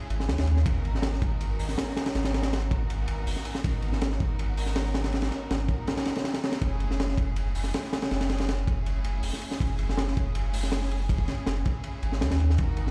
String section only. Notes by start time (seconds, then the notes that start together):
Already playing: A3 C#4 E4 G#4
0.38 A3 C#4 E4 G#4
0.47 A3 C#4 E4 G#4
0.66 B3 D#4 F#4 A#4
1.22 B3 D#4 F#4 A#4
2.15 B3 D#4 F#4 A#4
2.71 B3 D#4 F#4 A#4
3.64 B3 D#4 F#4 A#4
4.20 B3 D#4 F#4 A#4
5.13 B3 D#4 F#4 A#4
5.69 B3 D#4 F#4 A#4
6.34 B3 D#4 F#4 A#4
6.44 B3 D#4 F#4 A#4
6.62 A3 C#4 E4 G#4
7.18 A3 C#4 E4 G#4
8.11 A3 C#4 E4 G#4
8.67 A3 C#4 E4 G#4
9.60 A3 C#4 E4 G#4
10.16 A3 C#4 E4 G#4
11.09 A3 C#4 E4 G#4
11.65 A3 C#4 E4 G#4
12.59 B3 D#4 F#4 A#4